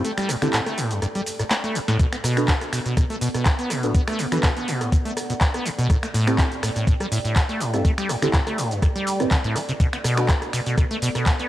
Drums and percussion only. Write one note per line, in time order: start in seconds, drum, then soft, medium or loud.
0.05 closed hi-hat medium
0.05 shaker soft
0.18 finger snap medium
0.18 closed hi-hat soft
0.18 shaker soft
0.29 cross-stick medium
0.29 open hi-hat loud
0.29 shaker medium
0.42 finger snap medium
0.42 closed hi-hat medium
0.42 shaker soft
0.53 clap loud
0.53 closed hi-hat medium
0.53 shaker soft
0.66 cross-stick medium
0.66 closed hi-hat soft
0.66 shaker soft
0.78 open hi-hat loud
0.78 shaker medium
0.91 closed hi-hat medium
0.91 shaker soft
1.02 cross-stick medium
1.02 closed hi-hat medium
1.02 shaker soft
1.15 closed hi-hat soft
1.15 shaker soft
1.26 open hi-hat loud
1.26 shaker medium
1.39 cross-stick medium
1.39 closed hi-hat medium
1.39 shaker soft
1.51 snare loud
1.51 clap loud
1.51 closed hi-hat medium
1.51 shaker soft
1.64 closed hi-hat soft
1.64 shaker soft
1.75 open hi-hat loud
1.75 shaker medium
1.88 snare medium
1.88 closed hi-hat medium
1.88 shaker soft
2.00 kick loud
2.00 closed hi-hat medium
2.00 shaker soft
2.13 finger snap medium
2.13 closed hi-hat soft
2.13 shaker soft
2.24 cross-stick medium
2.24 open hi-hat loud
2.24 shaker medium
2.37 finger snap medium
2.37 closed hi-hat medium
2.37 shaker soft
2.48 kick loud
2.48 clap loud
2.48 closed hi-hat medium
2.48 shaker soft
2.61 cross-stick medium
2.61 closed hi-hat soft
2.61 shaker soft
2.73 finger snap medium
2.73 open hi-hat loud
2.73 shaker medium
2.86 closed hi-hat medium
2.86 shaker soft
2.97 kick loud
2.97 cross-stick medium
2.97 closed hi-hat medium
2.97 shaker soft
3.10 closed hi-hat soft
3.10 shaker soft
3.21 open hi-hat loud
3.21 shaker medium
3.34 cross-stick medium
3.34 closed hi-hat medium
3.34 shaker soft
3.45 kick loud
3.45 clap loud
3.45 closed hi-hat medium
3.45 shaker soft
3.59 closed hi-hat soft
3.59 shaker soft
3.70 cross-stick medium
3.70 open hi-hat loud
3.70 shaker medium
3.83 closed hi-hat medium
3.83 shaker soft
3.95 kick loud
3.95 closed hi-hat medium
3.95 shaker soft
4.08 finger snap medium
4.08 cross-stick medium
4.08 closed hi-hat soft
4.08 shaker soft
4.19 open hi-hat loud
4.19 shaker medium
4.32 finger snap medium
4.32 closed hi-hat medium
4.32 shaker soft
4.43 kick loud
4.43 cross-stick medium
4.43 clap loud
4.43 closed hi-hat medium
4.43 shaker soft
4.57 closed hi-hat soft
4.57 shaker soft
4.68 open hi-hat loud
4.68 shaker medium
4.81 cross-stick medium
4.81 closed hi-hat medium
4.81 shaker soft
4.92 kick loud
4.92 closed hi-hat medium
4.92 shaker soft
5.05 closed hi-hat soft
5.05 shaker soft
5.17 cross-stick medium
5.17 open hi-hat loud
5.17 shaker medium
5.30 closed hi-hat medium
5.30 shaker soft
5.41 kick loud
5.41 clap loud
5.41 closed hi-hat medium
5.41 shaker soft
5.54 cross-stick medium
5.54 closed hi-hat soft
5.54 shaker soft
5.65 open hi-hat loud
5.65 shaker medium
5.79 closed hi-hat medium
5.79 shaker soft
5.90 kick loud
5.90 cross-stick medium
5.90 closed hi-hat medium
5.90 shaker soft
6.03 finger snap medium
6.03 closed hi-hat soft
6.03 shaker soft
6.14 open hi-hat loud
6.14 shaker medium
6.27 finger snap medium
6.27 cross-stick medium
6.27 closed hi-hat medium
6.27 shaker soft
6.38 kick loud
6.38 clap loud
6.38 closed hi-hat medium
6.38 shaker soft
6.52 closed hi-hat soft
6.52 shaker soft
6.63 finger snap medium
6.63 cross-stick medium
6.63 open hi-hat loud
6.63 shaker medium
6.76 closed hi-hat medium
6.76 shaker soft
6.87 kick loud
6.87 closed hi-hat medium
6.87 shaker soft
7.01 cross-stick medium
7.01 closed hi-hat soft
7.01 shaker soft
7.12 open hi-hat loud
7.12 shaker medium
7.25 closed hi-hat medium
7.25 shaker soft
7.36 kick loud
7.36 cross-stick medium
7.36 clap loud
7.36 closed hi-hat medium
7.36 shaker soft
7.49 closed hi-hat soft
7.49 shaker soft
7.61 open hi-hat loud
7.61 shaker medium
7.74 cross-stick medium
7.74 closed hi-hat soft
7.74 shaker soft
7.85 kick loud
7.85 closed hi-hat medium
7.85 shaker soft
7.98 finger snap medium
7.98 closed hi-hat soft
7.98 shaker soft
8.09 cross-stick medium
8.09 open hi-hat loud
8.09 shaker medium
8.22 finger snap medium
8.22 closed hi-hat soft
8.22 shaker soft
8.33 kick loud
8.33 clap loud
8.33 closed hi-hat medium
8.33 shaker soft
8.47 cross-stick medium
8.47 closed hi-hat soft
8.47 shaker soft
8.58 open hi-hat loud
8.58 shaker medium
8.71 closed hi-hat medium
8.71 shaker soft
8.82 kick loud
8.82 cross-stick medium
8.82 closed hi-hat medium
8.82 shaker soft
8.96 closed hi-hat soft
8.96 shaker soft
9.07 open hi-hat loud
9.07 shaker medium
9.20 cross-stick medium
9.20 closed hi-hat soft
9.20 shaker soft
9.31 kick loud
9.31 clap loud
9.31 closed hi-hat medium
9.31 shaker soft
9.44 closed hi-hat soft
9.44 shaker soft
9.56 cross-stick medium
9.56 open hi-hat loud
9.56 shaker medium
9.69 closed hi-hat soft
9.69 shaker soft
9.80 kick loud
9.80 closed hi-hat medium
9.80 shaker soft
9.93 finger snap medium
9.93 closed hi-hat soft
9.93 shaker soft
10.04 cross-stick medium
10.04 open hi-hat loud
10.04 shaker medium
10.17 finger snap medium
10.17 closed hi-hat medium
10.17 shaker soft
10.28 kick loud
10.28 clap loud
10.28 closed hi-hat medium
10.28 shaker soft
10.42 cross-stick medium
10.42 closed hi-hat soft
10.42 shaker soft
10.53 finger snap medium
10.53 open hi-hat loud
10.53 shaker medium
10.66 closed hi-hat medium
10.66 shaker soft
10.78 kick loud
10.78 cross-stick medium
10.78 closed hi-hat medium
10.78 shaker soft
10.91 closed hi-hat soft
10.91 shaker soft
11.02 open hi-hat loud
11.02 shaker medium
11.15 cross-stick medium
11.15 closed hi-hat medium
11.15 shaker soft
11.26 kick loud
11.26 clap loud
11.26 closed hi-hat medium
11.26 shaker soft
11.40 closed hi-hat soft
11.40 shaker soft